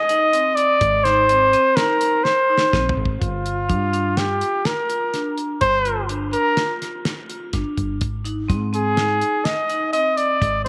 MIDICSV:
0, 0, Header, 1, 5, 480
1, 0, Start_track
1, 0, Tempo, 480000
1, 806, Time_signature, 5, 2, 24, 8
1, 10684, End_track
2, 0, Start_track
2, 0, Title_t, "Trumpet"
2, 0, Program_c, 0, 56
2, 0, Note_on_c, 0, 75, 98
2, 556, Note_on_c, 0, 74, 97
2, 571, Note_off_c, 0, 75, 0
2, 1039, Note_on_c, 0, 72, 89
2, 1054, Note_off_c, 0, 74, 0
2, 1758, Note_on_c, 0, 70, 81
2, 1773, Note_off_c, 0, 72, 0
2, 2236, Note_on_c, 0, 72, 75
2, 2251, Note_off_c, 0, 70, 0
2, 2960, Note_off_c, 0, 72, 0
2, 3204, Note_on_c, 0, 65, 73
2, 4174, Note_on_c, 0, 67, 78
2, 4189, Note_off_c, 0, 65, 0
2, 4659, Note_on_c, 0, 70, 83
2, 4674, Note_off_c, 0, 67, 0
2, 5373, Note_off_c, 0, 70, 0
2, 5610, Note_on_c, 0, 72, 95
2, 6055, Note_off_c, 0, 72, 0
2, 6324, Note_on_c, 0, 70, 89
2, 6772, Note_off_c, 0, 70, 0
2, 8747, Note_on_c, 0, 68, 88
2, 9450, Note_on_c, 0, 75, 82
2, 9465, Note_off_c, 0, 68, 0
2, 9919, Note_off_c, 0, 75, 0
2, 9925, Note_on_c, 0, 75, 86
2, 10169, Note_on_c, 0, 74, 92
2, 10184, Note_off_c, 0, 75, 0
2, 10646, Note_off_c, 0, 74, 0
2, 10652, Note_on_c, 0, 72, 78
2, 10684, Note_off_c, 0, 72, 0
2, 10684, End_track
3, 0, Start_track
3, 0, Title_t, "Vibraphone"
3, 0, Program_c, 1, 11
3, 92, Note_on_c, 1, 63, 64
3, 292, Note_off_c, 1, 63, 0
3, 328, Note_on_c, 1, 60, 65
3, 732, Note_off_c, 1, 60, 0
3, 1049, Note_on_c, 1, 63, 73
3, 1250, Note_off_c, 1, 63, 0
3, 1292, Note_on_c, 1, 60, 71
3, 1491, Note_off_c, 1, 60, 0
3, 1533, Note_on_c, 1, 60, 72
3, 1732, Note_off_c, 1, 60, 0
3, 1775, Note_on_c, 1, 63, 70
3, 2175, Note_off_c, 1, 63, 0
3, 2492, Note_on_c, 1, 63, 63
3, 2691, Note_off_c, 1, 63, 0
3, 2736, Note_on_c, 1, 60, 68
3, 3136, Note_off_c, 1, 60, 0
3, 3455, Note_on_c, 1, 65, 63
3, 3653, Note_off_c, 1, 65, 0
3, 3689, Note_on_c, 1, 62, 60
3, 3890, Note_off_c, 1, 62, 0
3, 3933, Note_on_c, 1, 62, 69
3, 4132, Note_off_c, 1, 62, 0
3, 4173, Note_on_c, 1, 65, 68
3, 4574, Note_off_c, 1, 65, 0
3, 4887, Note_on_c, 1, 65, 57
3, 5089, Note_off_c, 1, 65, 0
3, 5130, Note_on_c, 1, 62, 59
3, 5533, Note_off_c, 1, 62, 0
3, 5854, Note_on_c, 1, 65, 65
3, 6053, Note_off_c, 1, 65, 0
3, 6092, Note_on_c, 1, 62, 63
3, 6292, Note_off_c, 1, 62, 0
3, 6328, Note_on_c, 1, 62, 66
3, 6530, Note_off_c, 1, 62, 0
3, 6564, Note_on_c, 1, 65, 65
3, 6970, Note_off_c, 1, 65, 0
3, 7294, Note_on_c, 1, 65, 59
3, 7494, Note_off_c, 1, 65, 0
3, 7536, Note_on_c, 1, 62, 65
3, 7938, Note_off_c, 1, 62, 0
3, 8245, Note_on_c, 1, 63, 68
3, 8449, Note_off_c, 1, 63, 0
3, 8486, Note_on_c, 1, 60, 68
3, 8689, Note_off_c, 1, 60, 0
3, 8728, Note_on_c, 1, 60, 69
3, 8931, Note_off_c, 1, 60, 0
3, 8964, Note_on_c, 1, 63, 61
3, 9371, Note_off_c, 1, 63, 0
3, 9691, Note_on_c, 1, 63, 60
3, 9893, Note_off_c, 1, 63, 0
3, 9929, Note_on_c, 1, 60, 61
3, 10335, Note_off_c, 1, 60, 0
3, 10684, End_track
4, 0, Start_track
4, 0, Title_t, "Fretless electric bass"
4, 0, Program_c, 2, 35
4, 810, Note_on_c, 2, 32, 97
4, 1539, Note_off_c, 2, 32, 0
4, 2731, Note_on_c, 2, 34, 76
4, 2944, Note_off_c, 2, 34, 0
4, 2970, Note_on_c, 2, 32, 71
4, 3184, Note_off_c, 2, 32, 0
4, 3214, Note_on_c, 2, 31, 75
4, 3694, Note_on_c, 2, 43, 73
4, 3709, Note_off_c, 2, 31, 0
4, 4422, Note_off_c, 2, 43, 0
4, 5613, Note_on_c, 2, 31, 85
4, 6342, Note_off_c, 2, 31, 0
4, 7534, Note_on_c, 2, 31, 75
4, 7623, Note_off_c, 2, 31, 0
4, 7773, Note_on_c, 2, 31, 71
4, 8012, Note_off_c, 2, 31, 0
4, 8012, Note_on_c, 2, 32, 84
4, 8494, Note_on_c, 2, 44, 83
4, 8509, Note_off_c, 2, 32, 0
4, 9224, Note_off_c, 2, 44, 0
4, 10413, Note_on_c, 2, 32, 87
4, 10684, Note_off_c, 2, 32, 0
4, 10684, End_track
5, 0, Start_track
5, 0, Title_t, "Drums"
5, 93, Note_on_c, 9, 42, 59
5, 193, Note_off_c, 9, 42, 0
5, 334, Note_on_c, 9, 42, 73
5, 434, Note_off_c, 9, 42, 0
5, 572, Note_on_c, 9, 42, 55
5, 672, Note_off_c, 9, 42, 0
5, 809, Note_on_c, 9, 42, 77
5, 812, Note_on_c, 9, 36, 105
5, 909, Note_off_c, 9, 42, 0
5, 912, Note_off_c, 9, 36, 0
5, 1053, Note_on_c, 9, 38, 29
5, 1053, Note_on_c, 9, 42, 52
5, 1153, Note_off_c, 9, 38, 0
5, 1153, Note_off_c, 9, 42, 0
5, 1293, Note_on_c, 9, 42, 71
5, 1393, Note_off_c, 9, 42, 0
5, 1533, Note_on_c, 9, 42, 55
5, 1633, Note_off_c, 9, 42, 0
5, 1768, Note_on_c, 9, 38, 106
5, 1768, Note_on_c, 9, 42, 79
5, 1868, Note_off_c, 9, 38, 0
5, 1868, Note_off_c, 9, 42, 0
5, 2009, Note_on_c, 9, 42, 59
5, 2109, Note_off_c, 9, 42, 0
5, 2251, Note_on_c, 9, 38, 56
5, 2351, Note_off_c, 9, 38, 0
5, 2576, Note_on_c, 9, 38, 68
5, 2676, Note_off_c, 9, 38, 0
5, 2732, Note_on_c, 9, 38, 65
5, 2733, Note_on_c, 9, 36, 98
5, 2832, Note_off_c, 9, 38, 0
5, 2833, Note_off_c, 9, 36, 0
5, 2893, Note_on_c, 9, 43, 89
5, 2993, Note_off_c, 9, 43, 0
5, 3055, Note_on_c, 9, 36, 80
5, 3155, Note_off_c, 9, 36, 0
5, 3215, Note_on_c, 9, 36, 92
5, 3218, Note_on_c, 9, 42, 74
5, 3315, Note_off_c, 9, 36, 0
5, 3318, Note_off_c, 9, 42, 0
5, 3457, Note_on_c, 9, 42, 49
5, 3557, Note_off_c, 9, 42, 0
5, 3695, Note_on_c, 9, 42, 71
5, 3696, Note_on_c, 9, 36, 87
5, 3795, Note_off_c, 9, 42, 0
5, 3796, Note_off_c, 9, 36, 0
5, 3935, Note_on_c, 9, 42, 50
5, 4035, Note_off_c, 9, 42, 0
5, 4172, Note_on_c, 9, 38, 94
5, 4172, Note_on_c, 9, 42, 68
5, 4272, Note_off_c, 9, 38, 0
5, 4272, Note_off_c, 9, 42, 0
5, 4413, Note_on_c, 9, 42, 49
5, 4513, Note_off_c, 9, 42, 0
5, 4653, Note_on_c, 9, 38, 97
5, 4653, Note_on_c, 9, 42, 68
5, 4753, Note_off_c, 9, 38, 0
5, 4753, Note_off_c, 9, 42, 0
5, 4896, Note_on_c, 9, 42, 46
5, 4996, Note_off_c, 9, 42, 0
5, 5137, Note_on_c, 9, 38, 28
5, 5137, Note_on_c, 9, 42, 65
5, 5237, Note_off_c, 9, 38, 0
5, 5237, Note_off_c, 9, 42, 0
5, 5376, Note_on_c, 9, 42, 49
5, 5476, Note_off_c, 9, 42, 0
5, 5611, Note_on_c, 9, 42, 74
5, 5614, Note_on_c, 9, 36, 90
5, 5711, Note_off_c, 9, 42, 0
5, 5714, Note_off_c, 9, 36, 0
5, 5853, Note_on_c, 9, 42, 50
5, 5953, Note_off_c, 9, 42, 0
5, 6093, Note_on_c, 9, 42, 70
5, 6193, Note_off_c, 9, 42, 0
5, 6331, Note_on_c, 9, 42, 53
5, 6431, Note_off_c, 9, 42, 0
5, 6571, Note_on_c, 9, 38, 97
5, 6571, Note_on_c, 9, 42, 77
5, 6671, Note_off_c, 9, 38, 0
5, 6671, Note_off_c, 9, 42, 0
5, 6819, Note_on_c, 9, 38, 31
5, 6819, Note_on_c, 9, 42, 55
5, 6919, Note_off_c, 9, 38, 0
5, 6919, Note_off_c, 9, 42, 0
5, 7052, Note_on_c, 9, 38, 101
5, 7052, Note_on_c, 9, 42, 72
5, 7152, Note_off_c, 9, 38, 0
5, 7152, Note_off_c, 9, 42, 0
5, 7296, Note_on_c, 9, 42, 53
5, 7396, Note_off_c, 9, 42, 0
5, 7530, Note_on_c, 9, 38, 29
5, 7530, Note_on_c, 9, 42, 72
5, 7534, Note_on_c, 9, 36, 89
5, 7630, Note_off_c, 9, 38, 0
5, 7630, Note_off_c, 9, 42, 0
5, 7634, Note_off_c, 9, 36, 0
5, 7775, Note_on_c, 9, 36, 58
5, 7776, Note_on_c, 9, 42, 52
5, 7875, Note_off_c, 9, 36, 0
5, 7876, Note_off_c, 9, 42, 0
5, 8009, Note_on_c, 9, 42, 71
5, 8014, Note_on_c, 9, 36, 96
5, 8110, Note_off_c, 9, 42, 0
5, 8114, Note_off_c, 9, 36, 0
5, 8254, Note_on_c, 9, 42, 48
5, 8354, Note_off_c, 9, 42, 0
5, 8496, Note_on_c, 9, 36, 93
5, 8498, Note_on_c, 9, 42, 67
5, 8596, Note_off_c, 9, 36, 0
5, 8598, Note_off_c, 9, 42, 0
5, 8737, Note_on_c, 9, 42, 50
5, 8837, Note_off_c, 9, 42, 0
5, 8973, Note_on_c, 9, 38, 92
5, 8973, Note_on_c, 9, 42, 68
5, 9073, Note_off_c, 9, 38, 0
5, 9073, Note_off_c, 9, 42, 0
5, 9215, Note_on_c, 9, 42, 50
5, 9315, Note_off_c, 9, 42, 0
5, 9453, Note_on_c, 9, 38, 99
5, 9453, Note_on_c, 9, 42, 71
5, 9553, Note_off_c, 9, 38, 0
5, 9553, Note_off_c, 9, 42, 0
5, 9695, Note_on_c, 9, 42, 51
5, 9795, Note_off_c, 9, 42, 0
5, 9934, Note_on_c, 9, 42, 69
5, 10034, Note_off_c, 9, 42, 0
5, 10175, Note_on_c, 9, 42, 48
5, 10275, Note_off_c, 9, 42, 0
5, 10416, Note_on_c, 9, 36, 95
5, 10419, Note_on_c, 9, 42, 73
5, 10516, Note_off_c, 9, 36, 0
5, 10519, Note_off_c, 9, 42, 0
5, 10684, End_track
0, 0, End_of_file